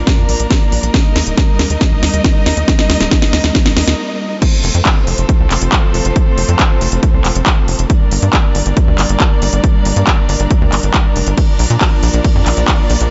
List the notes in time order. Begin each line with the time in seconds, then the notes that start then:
Already playing: F3 A#3 D4 A#4 D5
0.07 kick, snare, closed hi-hat
0.18 F2
0.29 A#1, open hi-hat
0.40 A#1, closed hi-hat
0.51 kick, snare, closed hi-hat
0.72 A#1, open hi-hat
0.83 A#1, closed hi-hat
0.94 G3 D#4 D#5, kick, snare, closed hi-hat
1.16 D#2, snare, open hi-hat
1.27 D#1, closed hi-hat
1.38 kick, snare, closed hi-hat
1.59 D#2, snare, open hi-hat
1.70 D#2, closed hi-hat
1.81 kick, snare, closed hi-hat
1.92 A#1
2.03 D#2, snare, open hi-hat
2.13 D#2, closed hi-hat
2.24 kick, snare, closed hi-hat
2.46 D#2, snare, open hi-hat
2.57 D#2, closed hi-hat
2.68 kick, snare, closed hi-hat
2.79 snare
2.90 D#2, snare, open hi-hat
3.01 D#1, snare, closed hi-hat
3.11 kick, snare, closed hi-hat
3.22 snare
3.33 D#2, snare, open hi-hat
3.44 D#2, snare, closed hi-hat
3.55 kick, snare, closed hi-hat
3.66 A#1, snare
3.77 D#2, snare, open hi-hat
3.88 D#2, snare, closed hi-hat
4.42 F3 A3 C4 A4 C5, kick, closed hi-hat, crash
4.64 F1, open hi-hat
4.75 F2, closed hi-hat
4.85 kick, clap, closed hi-hat
5.07 F1, open hi-hat
5.18 F1, closed hi-hat
5.29 kick, closed hi-hat
5.40 C2
5.51 F1, clap, open hi-hat
5.62 F1, closed hi-hat
5.72 kick, clap, closed hi-hat
5.94 F1, open hi-hat
6.05 F1, closed hi-hat
6.16 kick, closed hi-hat
6.38 F1, open hi-hat
6.49 F2, closed hi-hat
6.59 kick, clap, closed hi-hat
6.81 F1, open hi-hat
6.92 F1, closed hi-hat
7.03 kick, closed hi-hat
7.14 C2
7.25 F1, clap, open hi-hat
7.35 F1, closed hi-hat
7.46 kick, clap, closed hi-hat
7.68 F1, open hi-hat
7.79 F1, closed hi-hat
7.90 G3 A#3 D4 A#4 D5, kick, closed hi-hat
8.12 G1, open hi-hat
8.22 G2, closed hi-hat
8.33 kick, clap, closed hi-hat
8.55 G1, open hi-hat
8.66 G1, closed hi-hat
8.77 kick, closed hi-hat
8.88 D2
8.98 G1, clap, open hi-hat
9.09 G1, closed hi-hat
9.20 kick, clap, closed hi-hat
9.42 G1, open hi-hat
9.53 G1, closed hi-hat
9.64 kick, closed hi-hat
9.85 G1, open hi-hat
9.96 G2, closed hi-hat
10.07 kick, clap, closed hi-hat
10.29 G1, open hi-hat
10.40 G1, closed hi-hat
10.51 kick, closed hi-hat
10.62 D2
10.72 G1, clap, open hi-hat
10.83 G1, closed hi-hat
10.94 kick, clap, closed hi-hat
11.16 F1, open hi-hat
11.27 G1, closed hi-hat
11.37 F3 A#3 D5, kick, closed hi-hat, ride
11.59 A#1, open hi-hat
11.70 A#2, closed hi-hat
11.81 kick, clap, closed hi-hat, ride
12.03 A#1, open hi-hat
12.14 A#1, closed hi-hat
12.24 kick, closed hi-hat, ride
12.35 F2
12.46 A#1, clap, open hi-hat
12.57 A#1, closed hi-hat
12.68 kick, clap, closed hi-hat, ride
12.90 A#1, open hi-hat
13.01 A#1, closed hi-hat